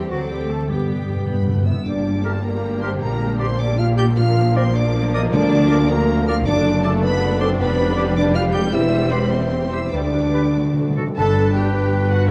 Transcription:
Already playing: harp E3 C4 G4 C5, cello section G3, french horn section G3, clarinet G4, violin section G5
0.10 double bass section D2, harp D3, cello section F#3, french horn section F#3, viola section C4 A4, clarinet F#4, violin section F#5 D6
0.29 cello section G3, french horn section G3, harp C4, clarinet G4, violin section G5
0.49 cello section A3, french horn section A3, clarinet A4, harp A4, violin section A5
0.69 double bass section G2, timpani G2, harp G2, cello section G3, french horn section G3, viola section B3 G4, clarinet G4, violin section G5 D6
0.77 timpani G2
0.86 timpani G2, harp D5
0.93 timpani G2
1.01 timpani G2
1.09 timpani G2, harp B3
1.16 timpani G2
1.25 timpani G2, viola section B3, french horn section B3, flute B4, harp D5, violin section B5
1.32 timpani G2
1.40 timpani G2
1.47 timpani G2, viola section A3
1.55 timpani G2
1.63 timpani G2, viola section B3, french horn section E4, harp D5, flute E5, violin section E6
1.71 timpani G2
1.85 double bass section G1, harp G2, cello section G2, viola section G3 A#3, french horn section D4, violin section D4 G4 D6, flute D5
1.96 harp A#3
2.05 harp G4
2.14 harp D5
2.24 french horn section A3, clarinet G4, flute A4, harp A#4, oboe A#4, violin section A5
2.34 harp G5
2.43 french horn section A#3, flute A#4, violin section A#5, harp D6
2.53 harp G5
2.63 harp D5
2.72 harp G4
2.82 harp A#3, french horn section C4, clarinet G4, oboe A#4, flute C5, violin section C6
2.92 harp D3
3.01 double bass section A#1, harp A#2, cello section A#2, french horn section A#3, flute A#4, violin section A#5
3.11 harp A#3
3.21 harp G4
3.40 french horn section C4, clarinet G4, harp A#4, flute C5, oboe D5, violin section C6
3.49 harp G5
3.59 french horn section D4, flute D5, harp D6, violin section D6
3.69 harp G5
3.78 french horn section F4, harp D5, flute F5, violin section F6
3.88 harp G4
3.97 harp A#3, french horn section G4, clarinet G4, oboe D5, flute G5, violin section G6
4.08 harp G3
4.16 harp A#2, viola section F3 A#3, violin section D4 A#4 F6, french horn section F4, flute F5
4.27 harp A#3
4.38 harp F4
4.47 harp D5
4.55 french horn section C4, clarinet A#4, harp A#4, flute C5, oboe D5, violin section C6
4.66 harp F5
4.76 french horn section D4, flute D5, violin section D6
4.86 harp F5
5.04 harp F4
5.14 harp A#3, french horn section D#4, clarinet A#4, oboe D5, flute D#5, violin section D#6
5.23 harp F3
5.32 double bass section D2, cello section D2, harp D3, timpani D3, french horn section D4, flute D5, violin section D6
5.43 harp A#3
5.52 harp F4
5.70 clarinet A#4, harp A#4, oboe D5
5.80 harp F5
5.89 french horn section A#3, flute A#4, violin section A#5, harp D6
5.98 harp F5
6.08 harp D5
6.18 harp F4
6.27 harp A#3, french horn section F4, clarinet A#4, oboe D5, flute F5, violin section F6
6.37 harp D4
6.46 double bass section F#1, harp F#2, cello section F#2, viola section A3 D4, violin section D4 A4 D6, french horn section D4, flute D5
6.56 harp A3
6.65 harp D4
6.83 french horn section A3, harp A4, flute A4, clarinet A4, oboe D5, violin section A5
6.93 harp D5
7.02 french horn section B3, flute B4, violin section B5, harp D6
7.11 harp D5
7.21 harp D4
7.30 harp A3
7.40 harp F#3, french horn section C4, clarinet A4, flute C5, oboe D5, violin section C6
7.50 harp A3
7.59 double bass section F1, harp F2, cello section F2, viola section G3, french horn section B3, violin section G4 B4 B5, flute B4
7.69 harp G3
7.78 harp D4
7.88 harp D5
7.97 harp G4, clarinet G4, oboe D5
8.16 french horn section D4, flute D5, violin section D6, harp D6
8.35 harp D4, french horn section F4, flute F5, violin section F6
8.45 harp G3
8.53 harp F3, french horn section G4, clarinet G4, oboe D5, flute G5, violin section G6
8.64 harp G3
8.72 double bass section E1, cello section E2, harp E2, viola section C4, french horn section E4, violin section C5 E6, flute E5
8.83 harp G3
9.03 harp C5
9.11 french horn section B3, clarinet G4, flute B4, oboe C5, violin section B5
9.23 harp E5
9.31 french horn section C4, flute C5, violin section C6, harp C6
9.43 harp E5
9.53 harp C5
9.63 harp E4
9.71 harp G3, french horn section E4, clarinet G4, oboe C5, flute E5, violin section E6
9.83 harp E3
9.92 double bass section D2, cello section D2, harp D3, viola section G3 D4, french horn section D4, violin section G4 B4 D6, flute D5
10.03 harp G3
10.13 harp G4
10.24 harp B4
10.34 clarinet G4, harp G4, oboe B4
10.45 harp G5
10.54 harp D3, timpani D3, viola section A3, violin section F#4 A4
10.64 timpani D3, harp A3
10.73 timpani D3, harp F#4
10.82 timpani D3
10.87 timpani D3, harp A4
10.96 timpani D3, clarinet F#4, harp F#4, oboe A4
11.07 timpani D3, harp F#5
11.16 double bass section G1, harp G2, cello section G2, timpani G2, french horn section D4, clarinet D4, violin section A4 A5, viola section A4, oboe B4, flute A5
11.36 harp G4
11.54 harp B3, violin section G4 G5, viola section G4, flute G5
11.74 harp G4, french horn section B4
12.10 violin section F#4 F#5, viola section F#4, harp G4, flute F#5

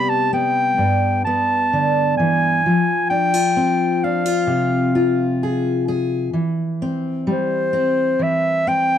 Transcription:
Already playing: steel-string acoustic guitar C3 G3 B3, clarinet B5
0.09 clarinet A5
0.33 steel-string acoustic guitar B3, clarinet G5
0.78 steel-string acoustic guitar G2
1.25 steel-string acoustic guitar B3, clarinet A5
1.73 steel-string acoustic guitar D3
2.17 steel-string acoustic guitar E3, clarinet G#5
2.66 steel-string acoustic guitar F3
3.10 steel-string acoustic guitar D4, clarinet G5
3.34 steel-string acoustic guitar F4
3.57 steel-string acoustic guitar C4
4.04 steel-string acoustic guitar D4, clarinet F5
4.26 steel-string acoustic guitar F4
4.47 steel-string acoustic guitar C3
4.95 steel-string acoustic guitar F4
5.43 steel-string acoustic guitar G#4
5.88 steel-string acoustic guitar G#4
6.33 steel-string acoustic guitar E3
6.82 steel-string acoustic guitar C4
7.27 steel-string acoustic guitar G3
7.32 clarinet C5
7.73 steel-string acoustic guitar C4
8.19 steel-string acoustic guitar E3, clarinet E5
8.67 steel-string acoustic guitar C4, clarinet G5

